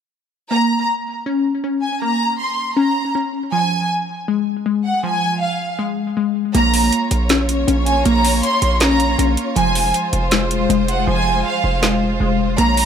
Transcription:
0.51 2.01 A#3 medium
0.51 0.86 A#5 loud
1.26 1.63 C#4 loud
1.64 2.75 C#4 medium
1.82 2.01 G#5 medium
2.02 3.53 A#3 medium
2.02 2.37 A#5 loud
2.40 2.75 C6 medium
2.77 3.14 C#4 loud
2.77 3.13 A#5 medium
3.15 3.53 C#4 medium
3.52 5.02 F3 medium
3.52 3.88 G#5 loud
4.28 4.65 G#3 medium
4.66 5.78 G#3 medium
4.85 5.03 F#5 medium
5.03 6.54 F3 loud
5.03 5.39 G#5 loud
5.41 5.77 F5 medium
5.79 6.16 G#3 medium
6.17 6.55 G#3 medium
6.55 6.91 A#1 loud
6.55 8.04 A#3 loud
6.55 9.53 A#3 medium
6.55 12.85 F4 medium
6.55 9.53 C#5 medium
6.55 6.90 A#5 loud
6.55 closed hi-hat medium
6.74 open hi-hat loud
6.92 closed hi-hat medium
7.11 7.65 A#1 loud
7.11 closed hi-hat medium
7.29 7.66 C#4 loud
7.29 snare loud
7.29 closed hi-hat medium
7.49 closed hi-hat medium
7.68 8.04 A#1 loud
7.68 8.79 C#4 medium
7.68 closed hi-hat medium
7.86 8.04 G#5 loud
7.86 closed hi-hat medium
8.05 8.42 A#1 loud
8.05 9.56 A#3 medium
8.05 8.41 A#5 loud
8.05 closed hi-hat medium
8.25 open hi-hat loud
8.43 8.79 C6 medium
8.43 closed hi-hat medium
8.62 9.16 A#1 loud
8.62 closed hi-hat medium
8.80 9.18 C#4 loud
8.80 9.17 A#5 loud
8.80 snare loud
8.80 closed hi-hat medium
9.00 closed hi-hat medium
9.19 9.37 A#1 loud
9.19 9.57 C#4 medium
9.19 closed hi-hat medium
9.37 closed hi-hat medium
9.56 9.93 F1 loud
9.56 11.06 F3 loud
9.56 12.55 G#3 medium
9.56 12.55 C5 medium
9.56 9.92 G#5 loud
9.56 closed hi-hat medium
9.75 open hi-hat loud
9.94 closed hi-hat medium
10.13 10.67 F1 loud
10.13 closed hi-hat medium
10.31 10.68 G#3 medium
10.31 snare loud
10.31 closed hi-hat medium
10.51 closed hi-hat medium
10.70 11.06 F1 loud
10.70 11.81 G#3 medium
10.70 closed hi-hat medium
10.88 11.06 F#5 medium
10.88 closed hi-hat medium
11.07 11.43 F1 loud
11.07 12.58 F3 loud
11.07 11.43 G#5 loud
11.45 11.80 F5 medium
11.64 12.18 F1 loud
11.82 12.19 G#3 medium
11.82 snare loud
12.20 12.57 F1 loud
12.20 12.58 G#3 medium
12.58 12.85 A#1 loud
12.58 12.85 A#3 medium
12.58 12.85 C#5 medium
12.58 12.85 A#5 loud
12.58 closed hi-hat medium
12.77 open hi-hat loud

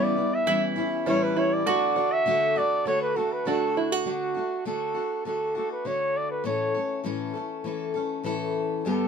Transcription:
0.00 0.17 C#3 medium
0.00 0.17 E3 medium
0.00 0.46 E3 medium
0.00 0.17 G3 medium
0.00 0.17 B3 medium
0.00 0.53 B3 medium
0.00 0.15 E4 medium
0.00 0.43 E4 loud
0.00 0.54 E4 medium
0.00 0.36 D5 medium
0.16 0.46 G3 soft
0.16 0.47 B3 soft
0.16 0.47 E4 soft
0.35 0.63 E5 medium
0.46 0.77 E3 medium
0.46 1.66 E3 medium
0.46 0.77 G3 medium
0.46 0.76 C#4 medium
0.46 1.66 E4 medium
0.46 0.75 E4 medium
0.76 1.06 G3 soft
0.76 1.07 C#4 medium
0.76 1.06 E4 medium
1.06 1.66 A2 medium
1.06 1.66 E3 medium
1.06 1.72 G3 medium
1.06 1.66 G3 medium
1.06 1.73 C#4 medium
1.06 1.67 C#4 medium
1.06 1.35 E4 medium
1.06 1.67 E4 medium
1.06 1.25 C#5 loud
1.23 1.40 B4 medium
1.37 1.66 E4 medium
1.37 1.55 C#5 medium
1.53 2.14 D5 loud
1.66 1.96 D3 medium
1.66 4.06 D3 medium
1.66 1.97 A3 medium
1.66 1.96 D4 medium
1.66 3.72 F#4 medium
1.66 3.46 F#4 medium
1.66 1.94 F#4 medium
1.96 2.26 A3 soft
1.96 3.46 D4 medium
1.96 2.26 D4 medium
1.96 2.26 F#4 soft
2.12 2.59 E5 loud
2.26 2.56 D3 medium
2.26 2.57 A3 medium
2.26 2.57 D4 medium
2.26 2.55 F#4 medium
2.56 2.85 A3 soft
2.56 2.87 D4 medium
2.56 2.86 F#4 medium
2.56 2.86 D5 loud
2.85 3.16 D3 medium
2.85 3.16 A3 medium
2.85 3.46 A3 medium
2.85 3.17 D4 medium
2.85 3.15 F#4 medium
2.85 3.01 C#5 medium
3.01 3.18 B4 medium
3.16 3.45 A3 soft
3.16 3.46 D4 medium
3.16 3.46 F#4 medium
3.16 3.34 A4 medium
3.32 3.49 B4 medium
3.45 4.04 D3 medium
3.45 4.05 A3 medium
3.45 4.12 A3 medium
3.45 4.05 D4 medium
3.45 4.12 D4 medium
3.45 3.77 F#4 medium
3.45 4.06 F#4 medium
3.45 3.77 A4 medium
3.77 3.92 E4 medium
3.92 4.12 F#4 medium
4.05 4.35 D3 medium
4.05 4.36 A3 medium
4.05 4.35 D4 medium
4.05 4.62 F#4 medium
4.05 4.33 F#4 medium
4.34 4.65 A3 soft
4.34 4.66 D4 soft
4.34 4.65 F#4 soft
4.65 4.95 D3 medium
4.65 4.96 A3 medium
4.65 4.95 D4 medium
4.65 4.93 F#4 medium
4.65 5.22 A4 medium
4.94 5.25 A3 soft
4.94 5.26 D4 soft
4.94 5.25 F#4 soft
5.25 5.55 D3 medium
5.25 5.56 A3 medium
5.25 5.56 D4 medium
5.25 5.54 F#4 medium
5.25 5.53 A4 medium
5.55 5.85 A3 soft
5.55 5.85 D4 soft
5.55 5.85 F#4 soft
5.55 5.70 A4 medium
5.72 5.88 B4 medium
5.85 6.44 D3 medium
5.85 6.44 A3 medium
5.85 6.45 D4 medium
5.85 6.46 F#4 medium
5.85 6.19 C#5 medium
6.17 6.30 D5 medium
6.31 6.44 B4 medium
6.44 6.74 A2 medium
6.44 6.75 E3 medium
6.44 6.75 A3 medium
6.44 6.75 C#4 medium
6.44 6.73 A4 medium
6.44 7.02 C#5 medium
6.75 7.04 A3 soft
6.75 7.05 C#4 soft
6.75 7.05 A4 medium
7.04 7.34 A2 medium
7.04 7.35 E3 medium
7.04 7.35 A3 medium
7.04 7.34 C#4 medium
7.04 7.32 A4 medium
7.33 7.64 A3 soft
7.33 7.65 C#4 soft
7.33 7.64 A4 soft
7.64 7.94 E3 medium
7.64 7.95 A3 medium
7.64 7.94 C#4 medium
7.64 7.93 A4 medium
7.94 8.24 A3 soft
7.94 8.25 C#4 medium
7.94 8.24 A4 medium
8.23 8.84 A2 medium
8.23 8.84 E3 medium
8.23 8.85 A3 medium
8.23 8.85 C#4 medium
8.23 8.85 A4 medium
8.85 9.08 G2 medium
8.85 9.08 D3 medium
8.85 9.08 G3 medium
8.85 9.08 B3 medium
8.85 9.08 D4 medium
8.85 9.08 G4 medium
8.85 9.08 A4 medium

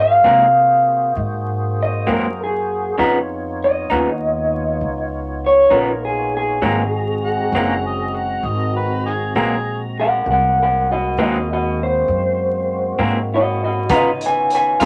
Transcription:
0.00 0.23 G#2 medium
0.00 2.97 A#3 medium
0.00 2.96 F#4 medium
0.00 2.96 G#4 medium
0.00 2.96 C5 medium
0.00 1.20 F5 medium
0.24 0.44 G#2 soft
0.24 1.13 C3 medium
0.24 0.44 F#3 soft
0.24 0.44 A#3 medium
0.24 0.44 C4 medium
1.16 2.05 G#2 medium
1.16 1.76 D#5 medium
1.83 2.10 D#5 medium
2.07 2.96 F#2 medium
2.07 2.26 G#2 soft
2.07 2.26 F#3 soft
2.07 2.26 A#3 medium
2.07 2.26 C4 medium
2.12 2.40 A#4 medium
2.44 3.00 G#4 medium
2.98 3.87 F2 medium
2.98 3.17 C#3 medium
2.98 3.17 F3 medium
2.98 6.59 B3 medium
2.98 3.17 B3 medium
2.98 6.59 D#4 medium
2.98 3.18 D#4 medium
2.98 6.60 F4 medium
2.98 6.59 C#5 medium
3.64 5.40 D#5 medium
3.90 4.79 D#2 medium
3.90 4.09 C#3 medium
3.90 4.09 F3 medium
3.90 4.09 B3 medium
3.90 4.08 D#4 medium
4.81 5.69 C#2 medium
5.46 5.74 C#5 medium
5.70 6.60 A#1 medium
5.70 5.90 C#3 soft
5.70 5.90 F3 medium
5.70 5.90 B3 medium
5.70 5.90 D#4 medium
5.76 6.03 A#4 medium
6.05 6.33 G#4 medium
6.37 8.13 G#4 medium
6.61 7.51 G#1 medium
6.61 6.81 G#2 medium
6.61 6.81 F#3 medium
6.61 10.23 G#3 medium
6.61 6.81 A#3 medium
6.61 10.23 C4 medium
6.61 6.82 C4 medium
6.61 10.23 F#4 medium
6.61 10.22 A#5 medium
7.25 7.83 F#5 medium
7.52 8.41 F#1 medium
7.52 7.73 F#3 medium
7.52 7.73 A#3 medium
7.52 7.73 C4 medium
7.56 7.73 G#2 medium
7.86 8.18 D#5 medium
8.16 8.47 F#5 medium
8.43 9.32 G#1 medium
8.43 8.75 D#5 medium
8.77 9.05 B4 medium
9.06 9.12 D#4 soft
9.06 9.35 G#4 medium
9.35 10.24 A#1 medium
9.35 9.55 G#2 medium
9.35 9.54 F#3 medium
9.35 9.54 A#3 medium
9.35 9.54 C4 medium
9.35 9.80 G#4 medium
10.00 10.28 A#4 medium
10.00 10.28 F#5 medium
10.26 11.15 C2 medium
10.26 13.86 G#3 medium
10.26 13.86 A#3 medium
10.26 13.86 C4 medium
10.26 13.86 F#4 medium
10.31 10.58 A#4 medium
10.31 10.58 F#5 medium
10.62 10.88 A#4 medium
10.62 10.90 F#5 medium
10.91 11.18 F#4 medium
10.91 11.19 D#5 medium
11.17 12.06 D#2 medium
11.17 11.37 G#2 soft
11.17 11.37 F#3 medium
11.17 11.36 A#3 medium
11.17 11.36 C4 medium
11.17 11.47 F#4 medium
11.22 11.49 D#5 medium
11.53 11.79 F#4 medium
11.53 11.80 D#5 medium
11.83 12.98 C5 medium
12.08 12.96 F#2 medium
12.98 13.87 G#2 medium
12.98 13.18 G#2 soft
12.98 13.18 F#3 medium
12.98 13.18 A#3 medium
12.98 13.17 C4 medium
13.34 13.62 F#4 medium
13.34 13.62 D#5 medium
13.64 13.90 F#4 medium
13.64 13.92 D#5 medium
13.89 14.78 C#3 medium
13.89 14.08 C#3 medium
13.89 14.08 B3 medium
13.89 14.85 B3 medium
13.89 14.08 D#4 medium
13.89 14.85 D#4 medium
13.89 14.85 F4 medium
13.89 14.09 F4 medium
13.89 14.85 C#5 medium
13.89 kick loud
13.89 closed hi-hat medium
13.95 14.21 B4 medium
13.95 14.23 D#5 medium
14.21 closed hi-hat medium
14.26 14.52 B4 medium
14.26 14.53 G#5 medium
14.50 closed hi-hat medium
14.55 14.81 B4 medium
14.55 14.82 G#5 medium
14.80 14.85 B2 medium
14.80 14.85 C#3 medium
14.80 14.85 B3 soft
14.80 14.85 D#4 medium
14.80 14.85 F4 medium
14.80 closed hi-hat medium

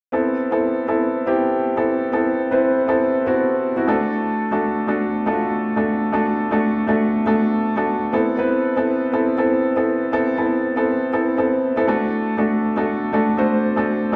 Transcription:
0.12 0.47 B3 medium
0.12 0.47 C4 medium
0.12 0.47 E4 medium
0.12 0.47 A4 medium
0.51 0.84 B3 medium
0.51 0.84 C4 medium
0.51 0.84 E4 medium
0.51 0.84 A4 medium
0.87 1.22 B3 medium
0.87 1.22 C4 medium
0.87 1.22 E4 medium
0.87 1.22 A4 medium
1.26 1.70 B3 medium
1.26 1.70 C4 medium
1.26 1.71 E4 medium
1.26 1.71 G4 medium
1.76 2.09 B3 medium
1.76 2.09 C4 medium
1.76 2.09 E4 medium
1.76 2.10 A4 medium
2.12 2.47 B3 medium
2.12 2.47 C4 medium
2.12 2.47 E4 medium
2.12 2.47 A4 medium
2.51 2.84 C4 medium
2.51 2.84 E4 medium
2.51 2.84 B4 medium
2.51 2.84 C5 medium
2.87 3.22 B3 medium
2.87 3.22 C4 medium
2.87 3.22 E4 medium
2.87 3.23 A4 medium
3.26 3.70 B3 medium
3.26 3.71 C4 medium
3.26 3.71 E4 medium
3.26 3.71 F#4 medium
3.76 3.88 B3 medium
3.76 3.88 C4 medium
3.76 3.88 E4 medium
3.76 3.87 F#4 medium
3.87 4.44 A3 medium
3.87 4.44 D4 medium
3.87 4.44 F#4 medium
3.87 4.44 A4 medium
4.51 4.84 A3 medium
4.51 4.84 D4 medium
4.51 4.84 F#4 medium
4.51 4.85 A4 medium
4.87 5.22 A3 medium
4.87 5.22 D4 medium
4.87 5.22 F#4 medium
4.87 5.22 A4 medium
5.26 5.70 A3 medium
5.26 5.70 D4 medium
5.26 5.32 F4 medium
5.26 5.71 A4 medium
5.33 5.74 F#4 medium
5.76 6.09 A3 medium
5.76 6.09 D4 medium
5.76 6.09 F#4 medium
5.76 6.10 A4 medium
6.12 6.47 A3 medium
6.12 6.47 D4 medium
6.12 6.47 F#4 medium
6.12 6.47 A4 medium
6.51 6.84 A3 medium
6.51 6.84 D4 medium
6.51 6.84 F#4 medium
6.51 6.84 A4 medium
6.87 7.22 A3 medium
6.87 7.22 D4 medium
6.87 7.22 F#4 medium
6.87 7.23 A4 medium
7.26 7.70 A3 medium
7.26 7.70 D4 medium
7.26 7.71 F#4 medium
7.26 7.71 A4 medium
7.76 8.09 A3 medium
7.76 8.09 D4 medium
7.76 8.09 F#4 medium
7.76 8.10 A4 medium
8.12 8.35 B3 medium
8.12 8.35 C4 medium
8.12 8.36 E4 medium
8.12 8.36 A4 medium
8.37 8.72 B3 medium
8.37 8.72 C4 medium
8.37 8.72 E4 medium
8.37 8.72 B4 medium
8.76 9.09 B3 medium
8.76 9.09 C4 medium
8.76 9.09 E4 medium
8.76 9.09 A4 medium
9.12 9.35 B3 medium
9.12 9.35 C4 medium
9.12 9.36 E4 medium
9.12 9.36 A4 medium
9.37 9.72 B3 medium
9.37 9.72 C4 medium
9.37 9.72 E4 medium
9.37 9.72 A4 medium
9.76 10.09 B3 medium
9.76 10.09 C4 medium
9.76 10.09 E4 medium
9.76 10.09 A4 medium
10.12 10.35 B3 medium
10.12 10.35 C4 medium
10.12 10.35 E4 medium
10.12 10.36 A4 medium
10.37 10.72 B3 medium
10.37 10.72 C4 medium
10.37 10.72 E4 medium
10.37 10.72 A4 medium
10.76 11.09 B3 medium
10.76 11.09 C4 medium
10.76 11.09 E4 medium
10.76 11.09 A4 medium
11.12 11.35 B3 medium
11.12 11.35 C4 medium
11.12 11.36 E4 medium
11.12 11.36 A4 medium
11.37 11.72 B3 medium
11.37 11.72 C4 medium
11.37 11.72 E4 medium
11.37 11.72 A4 medium
11.76 11.88 B3 medium
11.76 11.88 C4 medium
11.76 11.88 E4 medium
11.76 11.87 A4 medium
11.87 12.33 A3 medium
11.87 12.33 D4 medium
11.87 12.33 F#4 medium
11.87 12.33 A4 medium
12.37 12.72 A3 medium
12.37 12.72 D4 medium
12.37 12.72 F#4 medium
12.37 12.72 A4 medium
12.76 13.09 A3 medium
12.76 13.09 D4 medium
12.76 13.09 F#4 medium
12.76 13.10 A4 medium
13.12 13.35 A3 medium
13.12 13.35 D4 medium
13.12 13.36 F#4 medium
13.12 13.36 A4 medium
13.37 13.72 A3 medium
13.37 13.72 D4 medium
13.37 13.72 F#4 medium
13.37 13.72 C5 medium
13.76 14.09 A3 medium
13.76 14.09 D4 medium
13.76 14.09 F#4 medium
13.76 14.10 A4 medium
14.12 14.16 A3 medium
14.12 14.16 D4 medium

